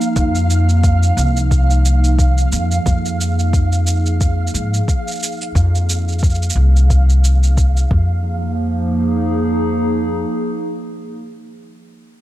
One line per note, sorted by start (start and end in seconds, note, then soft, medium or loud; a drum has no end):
0.00 7.90 F3 medium
0.00 7.91 A#3 medium
0.00 7.91 D#4 medium
0.00 7.91 G#4 medium
0.00 8.26 F5 medium
0.00 cabasa soft
0.16 1.09 F2 medium
0.16 kick loud
0.16 cabasa soft
0.35 cabasa soft
0.50 cabasa medium
0.69 cabasa soft
0.84 kick medium
0.84 cabasa soft
1.03 cabasa soft
1.17 2.44 C2 medium
1.17 cabasa medium
1.37 cabasa soft
1.51 kick medium
1.51 cabasa soft
1.70 cabasa soft
1.85 cabasa medium
2.04 cabasa soft
2.19 kick medium
2.19 cabasa soft
2.38 cabasa soft
2.52 2.76 F2 medium
2.52 cabasa medium
2.71 cabasa soft
2.86 4.47 F2 medium
2.86 kick medium
2.86 cabasa soft
3.05 cabasa soft
3.21 cabasa medium
3.39 cabasa soft
3.53 kick medium
3.53 cabasa soft
3.72 cabasa soft
3.87 cabasa medium
4.06 cabasa soft
4.21 kick medium
4.21 cabasa soft
4.47 cabasa soft
4.54 4.78 G#2 medium
4.54 cabasa medium
4.74 cabasa soft
4.88 kick medium
4.88 cabasa soft
5.08 cabasa soft
5.11 cabasa soft
5.15 cabasa soft
5.19 cabasa soft
5.23 cabasa medium
5.27 cabasa soft
5.37 cabasa soft
5.41 cabasa soft
5.55 6.49 F2 medium
5.55 kick medium
5.55 cabasa soft
5.75 cabasa soft
5.89 cabasa medium
6.08 cabasa soft
6.12 cabasa soft
6.19 cabasa soft
6.23 kick loud
6.23 cabasa soft
6.30 cabasa soft
6.34 cabasa soft
6.42 cabasa soft
6.50 cabasa medium
6.55 7.83 C2 medium
6.76 cabasa soft
6.90 kick medium
6.90 cabasa soft
7.10 cabasa soft
7.24 cabasa medium
7.43 cabasa soft
7.57 kick medium
7.57 cabasa soft
7.77 cabasa soft
7.91 10.23 F2 medium
7.91 11.70 F3 medium
7.91 kick loud
8.02 11.70 A#3 medium
8.46 11.70 D#4 medium
8.55 11.70 G#4 medium